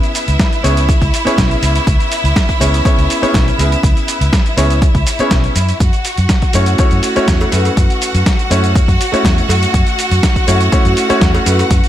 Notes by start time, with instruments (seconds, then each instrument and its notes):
Already playing: grand piano B3 C#4 E4 G#4 B4, string section E4 E5
0.03 closed hi-hat, shaker
0.15 open hi-hat, shaker
0.28 fingered electric bass C#2, closed hi-hat, shaker
0.39 kick, snare, closed hi-hat, shaker
0.53 closed hi-hat, shaker
0.63 fingered electric bass C#2, grand piano B3 C#4 E4 G#4 C#5, open hi-hat, shaker
0.77 closed hi-hat, shaker
0.89 kick, closed hi-hat, shaker
1.02 fingered electric bass C#2, kick, closed hi-hat, shaker
1.14 open hi-hat, shaker
1.25 grand piano B3 C#4 E4 G#4 C#5, muted fingered electric bass stroke, closed hi-hat, shaker
1.38 fingered electric bass B1, kick, snare, closed hi-hat, shaker
1.51 closed hi-hat, shaker
1.63 fingered electric bass C#2, open hi-hat, shaker
1.76 closed hi-hat, shaker
1.87 fingered electric bass C#2, kick, closed hi-hat, shaker
2.00 closed hi-hat, shaker
2.12 open hi-hat, shaker
2.24 fingered electric bass C#2, closed hi-hat, shaker
2.36 kick, snare, closed hi-hat, shaker
2.49 kick, closed hi-hat, shaker
2.60 fingered electric bass C#2, grand piano B3 C#4 E4 G#4 C#5, open hi-hat, shaker
2.74 closed hi-hat, shaker
2.85 grand piano B3 C#4 E4 G#4 C#5, kick, closed hi-hat, shaker
2.98 fingered electric bass C#2, closed hi-hat, shaker
3.10 open hi-hat, shaker
3.22 grand piano B3 C#4 E4 G#4 C#5, muted fingered electric bass stroke, closed hi-hat, shaker
3.34 fingered electric bass B1, kick, snare, closed hi-hat, shaker
3.48 closed hi-hat, shaker
3.58 fingered electric bass C#2, grand piano B3 C#4 E4 G#4 B4, open hi-hat, shaker
3.72 closed hi-hat, shaker
3.83 fingered electric bass C#2, kick, closed hi-hat, shaker
3.97 closed hi-hat, shaker
4.08 open hi-hat, shaker
4.21 fingered electric bass C#2, closed hi-hat, shaker
4.33 kick, snare, closed hi-hat, shaker
4.46 closed hi-hat, shaker
4.57 fingered electric bass C#2, grand piano B3 C#4 E4 G#4 C#5, open hi-hat, shaker
4.70 closed hi-hat, shaker
4.82 kick, closed hi-hat, shaker
4.95 fingered electric bass C#2, kick, closed hi-hat, shaker
5.07 open hi-hat, shaker
5.19 grand piano B3 C#4 E4 G#4 C#5, muted fingered electric bass stroke, closed hi-hat, shaker
5.31 fingered electric bass B1, kick, snare, closed hi-hat, shaker
5.44 closed hi-hat, shaker
5.56 fingered electric bass F#2, open hi-hat, shaker
5.69 closed hi-hat, shaker
5.80 fingered electric bass F#2, string section F#4 F#5, kick, closed hi-hat, shaker
5.93 closed hi-hat, shaker
6.05 open hi-hat, shaker
6.18 fingered electric bass F#2, closed hi-hat, shaker
6.29 kick, snare, closed hi-hat, shaker
6.42 kick, closed hi-hat, shaker
6.53 fingered electric bass F#2, grand piano A3 C#4 E4 F#4 C#5, open hi-hat, shaker
6.66 closed hi-hat, shaker
6.78 grand piano A3 C#4 E4 F#4 C#5, muted fingered electric bass stroke, kick, closed hi-hat, shaker
6.91 fingered electric bass F#2, closed hi-hat, shaker
7.03 open hi-hat, shaker
7.16 grand piano A3 C#4 E4 F#4 C#5, muted fingered electric bass stroke, closed hi-hat, shaker
7.28 fingered electric bass E2, kick, snare, closed hi-hat, shaker
7.41 closed hi-hat, cowbell, shaker
7.51 fingered electric bass F#2, grand piano A3 C#4 E4 F#4 B4, open hi-hat, cowbell, shaker
7.65 closed hi-hat, cowbell, shaker
7.77 fingered electric bass F#2, kick, closed hi-hat, shaker
7.90 closed hi-hat, shaker
8.02 open hi-hat, shaker
8.15 fingered electric bass F#2, closed hi-hat, shaker
8.26 kick, snare, closed hi-hat, shaker
8.39 closed hi-hat, shaker
8.50 fingered electric bass F#2, grand piano A3 C#4 E4 F#4 C#5, open hi-hat, shaker
8.64 closed hi-hat, shaker
8.75 kick, closed hi-hat, shaker
8.88 fingered electric bass F#2, kick, closed hi-hat, shaker
9.01 open hi-hat, shaker
9.12 grand piano A3 C#4 E4 F#4 C#5, muted fingered electric bass stroke, closed hi-hat, shaker
9.25 fingered electric bass E2, kick, snare, closed hi-hat, shaker
9.38 closed hi-hat, shaker
9.49 fingered electric bass F#2, open hi-hat, cowbell, shaker
9.63 closed hi-hat, shaker
9.74 fingered electric bass F#2, kick, closed hi-hat, shaker
9.87 closed hi-hat, shaker
9.99 open hi-hat, shaker
10.11 fingered electric bass F#2, closed hi-hat, shaker
10.23 kick, snare, closed hi-hat, shaker
10.36 kick, closed hi-hat, shaker
10.47 fingered electric bass F#2, grand piano A3 C#4 E4 F#4 C#5, open hi-hat, shaker
10.61 closed hi-hat, shaker
10.72 grand piano A3 C#4 E4 F#4 C#5, muted fingered electric bass stroke, kick, closed hi-hat, shaker
10.85 fingered electric bass F#2, closed hi-hat, shaker
10.97 open hi-hat, shaker
11.09 grand piano A3 C#4 E4 F#4 C#5, muted fingered electric bass stroke, closed hi-hat, shaker
11.21 fingered electric bass E2, kick, snare, closed hi-hat, shaker
11.34 closed hi-hat, cowbell, shaker
11.45 fingered electric bass F#2, grand piano A3 C#4 E4 F#4 B4, open hi-hat, cowbell, shaker
11.59 closed hi-hat, cowbell, shaker
11.71 fingered electric bass F#2, kick, closed hi-hat, shaker
11.84 closed hi-hat, shaker